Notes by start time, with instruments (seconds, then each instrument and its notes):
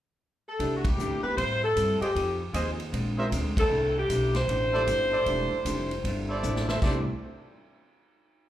0.48 saxophone section A4
0.59 upright bass C2, hollow-body jazz guitar C3 A3 D4 E4, upright piano A3 D4 E4 G4, kick, ride
0.76 saxophone section F#4
0.85 saxophone section G4, kick, ride
0.98 upright bass D2, hollow-body jazz guitar C3 A3 D4 E4, hi-hat pedal
1.23 upright piano B3 C4 E4 G4, saxophone section B4, muted upright bass stroke
1.37 hollow-body jazz guitar A2 G3 C4 E4, upright bass A2, saxophone section C5, kick, ride
1.64 saxophone section A4
1.76 upright bass G2, hollow-body jazz guitar A2 G3 C4 E4, kick, hi-hat pedal, ride
2.01 trumpet section F4 G#4 C5 D#5, saxophone section G4, muted upright bass stroke, ride
2.15 upright bass F2, hollow-body jazz guitar F3 C4 D#4 G#4, kick, ride
2.53 upright bass D#2, hollow-body jazz guitar F3 C4 D#4 G#4, trumpet section F4 G#4 C5 D#5, kick, hi-hat pedal, ride
2.80 ride
2.92 upright bass A#1, hollow-body jazz guitar A#2 G#3 C4 D4, kick, ride
3.18 upright piano G#3 C4 D4 F4, trumpet section G#4 A#4 C5 E5
3.32 upright bass D2, hollow-body jazz guitar A#2 G#3 C4 D4, kick, hi-hat pedal, ride
3.57 saxophone section A4, kick, ride
3.69 upright bass C2, hollow-body jazz guitar C3 A3 D4 E4
3.98 saxophone section G4
4.09 upright bass B1, hollow-body jazz guitar C3 A3 D4 E4, kick, hi-hat pedal, ride
4.34 saxophone section C5, snare, ride
4.48 upright bass A1, hollow-body jazz guitar C3 A3 D4 E4, kick, ride
4.73 upright piano G3 A3 D4 E4, trumpet section E4 A4 C5 D5
4.87 upright bass G1, hollow-body jazz guitar C3 A3 D4 E4, kick, hi-hat pedal, ride
5.12 trumpet section E4 A4 C5 D5
5.26 upright bass E1, hollow-body jazz guitar C3 A3 D4 E4, upright piano G3 A3 D4 E4, kick, ride
5.52 muted upright bass stroke
5.65 upright bass F1, hollow-body jazz guitar C3 A3 D4 E4, upright piano G3 A3 D4 E4, kick, hi-hat pedal, ride
5.91 ride
6.04 upright bass G1, hollow-body jazz guitar C3 A3 D4 E4, kick, ride
6.29 trumpet section E4 A4 C5 D5
6.43 upright bass A1, hollow-body jazz guitar C3 A3 D4 E4, hi-hat pedal, mid tom
6.56 snare
6.68 trumpet section E4 A4 C5 E5, snare
6.82 upright bass C2, hollow-body jazz guitar C3 A3 D4, upright piano G3 A3 C4 D4 E4, trumpet section E4 A4 C5 D5, kick, snare, crash
6.86 hollow-body jazz guitar E4